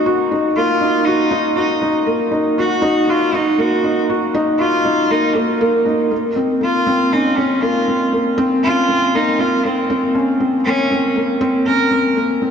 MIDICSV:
0, 0, Header, 1, 3, 480
1, 0, Start_track
1, 0, Key_signature, -5, "minor"
1, 0, Tempo, 504202
1, 60, Time_signature, 4, 2, 24, 8
1, 11906, End_track
2, 0, Start_track
2, 0, Title_t, "Cello"
2, 0, Program_c, 0, 42
2, 540, Note_on_c, 0, 65, 105
2, 998, Note_on_c, 0, 63, 105
2, 1012, Note_off_c, 0, 65, 0
2, 1474, Note_off_c, 0, 63, 0
2, 1480, Note_on_c, 0, 63, 84
2, 1824, Note_off_c, 0, 63, 0
2, 2470, Note_on_c, 0, 66, 112
2, 2948, Note_on_c, 0, 65, 111
2, 2962, Note_off_c, 0, 66, 0
2, 3184, Note_on_c, 0, 63, 99
2, 3199, Note_off_c, 0, 65, 0
2, 3423, Note_on_c, 0, 66, 91
2, 3437, Note_off_c, 0, 63, 0
2, 3782, Note_off_c, 0, 66, 0
2, 4375, Note_on_c, 0, 65, 105
2, 4863, Note_on_c, 0, 63, 98
2, 4878, Note_off_c, 0, 65, 0
2, 5107, Note_on_c, 0, 58, 84
2, 5122, Note_off_c, 0, 63, 0
2, 5584, Note_off_c, 0, 58, 0
2, 6324, Note_on_c, 0, 65, 108
2, 6788, Note_on_c, 0, 63, 101
2, 6802, Note_off_c, 0, 65, 0
2, 7021, Note_on_c, 0, 61, 89
2, 7036, Note_off_c, 0, 63, 0
2, 7262, Note_on_c, 0, 65, 93
2, 7276, Note_off_c, 0, 61, 0
2, 7621, Note_off_c, 0, 65, 0
2, 8220, Note_on_c, 0, 65, 118
2, 8714, Note_on_c, 0, 63, 103
2, 8728, Note_off_c, 0, 65, 0
2, 8946, Note_on_c, 0, 65, 102
2, 8960, Note_off_c, 0, 63, 0
2, 9189, Note_on_c, 0, 60, 83
2, 9203, Note_off_c, 0, 65, 0
2, 9545, Note_off_c, 0, 60, 0
2, 10138, Note_on_c, 0, 61, 115
2, 10585, Note_off_c, 0, 61, 0
2, 11103, Note_on_c, 0, 70, 107
2, 11548, Note_off_c, 0, 70, 0
2, 11906, End_track
3, 0, Start_track
3, 0, Title_t, "Felt piano"
3, 0, Program_c, 1, 0
3, 0, Control_c, 1, 64, 127
3, 0, Note_on_c, 1, 58, 75
3, 0, Note_on_c, 1, 63, 99
3, 0, Note_on_c, 1, 66, 75
3, 58, Note_off_c, 1, 66, 0
3, 58, Note_on_c, 1, 66, 84
3, 287, Note_off_c, 1, 66, 0
3, 299, Note_off_c, 1, 63, 0
3, 299, Note_on_c, 1, 63, 80
3, 437, Note_off_c, 1, 63, 0
3, 539, Note_off_c, 1, 58, 0
3, 539, Note_on_c, 1, 58, 71
3, 768, Note_off_c, 1, 58, 0
3, 771, Note_on_c, 1, 63, 76
3, 1004, Note_off_c, 1, 63, 0
3, 1016, Note_on_c, 1, 66, 88
3, 1246, Note_off_c, 1, 66, 0
3, 1247, Note_on_c, 1, 63, 102
3, 1482, Note_off_c, 1, 63, 0
3, 1485, Note_on_c, 1, 66, 72
3, 1721, Note_off_c, 1, 66, 0
3, 1730, Note_on_c, 1, 63, 77
3, 1872, Note_off_c, 1, 63, 0
3, 1967, Note_on_c, 1, 58, 84
3, 2202, Note_off_c, 1, 58, 0
3, 2204, Note_on_c, 1, 63, 79
3, 2440, Note_off_c, 1, 63, 0
3, 2456, Note_on_c, 1, 66, 76
3, 2684, Note_on_c, 1, 63, 112
3, 2686, Note_off_c, 1, 66, 0
3, 2920, Note_off_c, 1, 63, 0
3, 2929, Note_on_c, 1, 66, 79
3, 3163, Note_off_c, 1, 66, 0
3, 3169, Note_on_c, 1, 63, 75
3, 3311, Note_off_c, 1, 63, 0
3, 3409, Note_on_c, 1, 58, 77
3, 3643, Note_off_c, 1, 58, 0
3, 3656, Note_on_c, 1, 63, 73
3, 3886, Note_off_c, 1, 63, 0
3, 3899, Note_on_c, 1, 66, 78
3, 4128, Note_off_c, 1, 66, 0
3, 4137, Note_on_c, 1, 63, 102
3, 4367, Note_off_c, 1, 63, 0
3, 4378, Note_on_c, 1, 66, 69
3, 4607, Note_off_c, 1, 66, 0
3, 4616, Note_on_c, 1, 63, 78
3, 4755, Note_off_c, 1, 63, 0
3, 4861, Note_on_c, 1, 58, 82
3, 5089, Note_off_c, 1, 58, 0
3, 5097, Note_on_c, 1, 70, 78
3, 5327, Note_off_c, 1, 70, 0
3, 5339, Note_on_c, 1, 58, 100
3, 5568, Note_off_c, 1, 58, 0
3, 5574, Note_on_c, 1, 63, 75
3, 5805, Note_off_c, 1, 63, 0
3, 5818, Note_on_c, 1, 58, 80
3, 5832, Control_c, 1, 64, 0
3, 5984, Control_c, 1, 64, 127
3, 6047, Note_off_c, 1, 58, 0
3, 6056, Note_on_c, 1, 60, 76
3, 6286, Note_off_c, 1, 60, 0
3, 6293, Note_on_c, 1, 58, 70
3, 6525, Note_off_c, 1, 58, 0
3, 6537, Note_on_c, 1, 60, 97
3, 6767, Note_off_c, 1, 60, 0
3, 6781, Note_on_c, 1, 61, 81
3, 7009, Note_off_c, 1, 61, 0
3, 7023, Note_on_c, 1, 60, 79
3, 7158, Note_off_c, 1, 60, 0
3, 7255, Note_on_c, 1, 58, 76
3, 7486, Note_off_c, 1, 58, 0
3, 7502, Note_on_c, 1, 60, 77
3, 7729, Note_off_c, 1, 60, 0
3, 7737, Note_on_c, 1, 58, 77
3, 7967, Note_off_c, 1, 58, 0
3, 7975, Note_on_c, 1, 60, 111
3, 8206, Note_off_c, 1, 60, 0
3, 8218, Note_on_c, 1, 61, 74
3, 8447, Note_off_c, 1, 61, 0
3, 8460, Note_on_c, 1, 60, 81
3, 8597, Note_off_c, 1, 60, 0
3, 8706, Note_on_c, 1, 58, 84
3, 8931, Note_off_c, 1, 58, 0
3, 8939, Note_on_c, 1, 60, 79
3, 9168, Note_off_c, 1, 60, 0
3, 9189, Note_on_c, 1, 58, 77
3, 9413, Note_off_c, 1, 58, 0
3, 9424, Note_on_c, 1, 60, 95
3, 9650, Note_off_c, 1, 60, 0
3, 9662, Note_on_c, 1, 61, 80
3, 9889, Note_off_c, 1, 61, 0
3, 9903, Note_on_c, 1, 60, 79
3, 10039, Note_off_c, 1, 60, 0
3, 10152, Note_on_c, 1, 58, 78
3, 10374, Note_off_c, 1, 58, 0
3, 10389, Note_on_c, 1, 60, 77
3, 10613, Note_off_c, 1, 60, 0
3, 10623, Note_on_c, 1, 58, 86
3, 10850, Note_off_c, 1, 58, 0
3, 10861, Note_on_c, 1, 60, 106
3, 11089, Note_off_c, 1, 60, 0
3, 11108, Note_on_c, 1, 61, 76
3, 11332, Note_off_c, 1, 61, 0
3, 11340, Note_on_c, 1, 60, 74
3, 11477, Note_off_c, 1, 60, 0
3, 11584, Note_on_c, 1, 58, 83
3, 11810, Note_off_c, 1, 58, 0
3, 11823, Note_on_c, 1, 60, 78
3, 11906, Note_off_c, 1, 60, 0
3, 11906, End_track
0, 0, End_of_file